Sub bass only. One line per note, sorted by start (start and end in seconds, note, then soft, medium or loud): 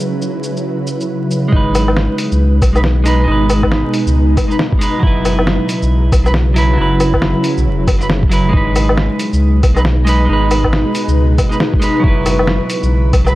1.52 2.08 G#1 loud
2.32 2.61 C#2 medium
2.62 3.27 B1 loud
3.27 3.83 G#1 loud
4.06 4.36 C#2 medium
5.03 5.58 F#1 loud
5.82 6.11 B1 medium
6.12 6.77 B1 loud
6.78 7.34 F#1 loud
7.57 7.67 B1 medium
7.66 7.86 E1 medium
7.88 8.52 F#1 medium
8.53 9.09 G#1 loud
9.33 9.62 C#2 medium
9.63 10.28 B1 loud
10.29 10.84 G#1 loud
11.08 11.37 C#2 medium
12.04 12.59 F#1 loud
12.83 13.12 B1 medium
13.13 13.35 B1 loud